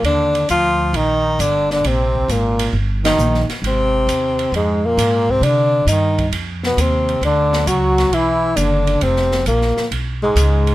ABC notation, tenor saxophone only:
X:1
M:4/4
L:1/8
Q:"Swing" 1/4=134
K:Ablyd
V:1 name="Tenor saxophone"
D2 F2 E2 D D | C2 B,2 z E2 z | C4 A, B,2 C | D2 E2 z _C =C2 |
D2 ^F2 =E2 D2 | C2 B,2 z A,3 |]